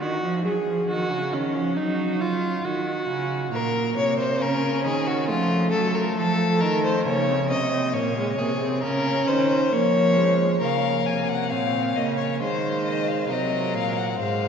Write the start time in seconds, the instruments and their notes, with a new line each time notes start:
0.00 cello D#3, viola F#4
0.22 cello F3
0.44 cello F#3, viola G#4
0.66 cello F3
0.88 cello D#3, viola F#4
1.10 cello C#3
1.32 cello D#3, viola C#4
1.54 cello F3
1.77 cello F#3, viola D#4
2.21 viola F4
2.64 cello D#3, viola F#4
3.08 cello C#3
3.52 cello A#2, viola A#3, violin A#4
3.96 cello C3, violin C#5
4.19 violin C5
4.41 cello C#3, viola C#4, violin A#4
4.84 cello D#3, violin G#4
5.07 violin F#4
5.28 cello F3, viola A3, violin F4
5.72 cello F#3, violin A4
5.94 violin A#4
6.16 cello F3, violin A4
6.61 cello D#3, violin A#4
6.84 violin C5
7.05 cello C#3, viola A#3, violin C#5
7.28 viola C4
7.50 cello C3, viola C#4, violin D#5
7.72 viola C4
7.93 cello A#2, viola A#3, violin C#5
8.17 viola G#3
8.38 cello C3, viola A#3, violin G#4
8.61 viola C4
8.82 cello C#3, viola C#4, violin A#4
9.27 cello D#3, violin C5
9.72 cello F3, viola A#3, violin C#5
10.16 viola G#3
10.61 cello C#3, viola A#3, violin A#4 F5
11.06 cello C3, violin G#5
11.29 violin F#5
11.50 cello A#2, viola C4, violin C#5 F5
11.96 cello C#3, viola A#3, violin D#5
12.17 violin C#5
12.40 cello D#3, viola G#3, violin C5
12.86 violin D#5
13.07 violin F5
13.29 cello C3, viola F#3, violin A#4 D#5
13.74 cello A#2, violin F5
13.98 violin F#5
14.19 cello G#2, viola G#3, violin C5 F5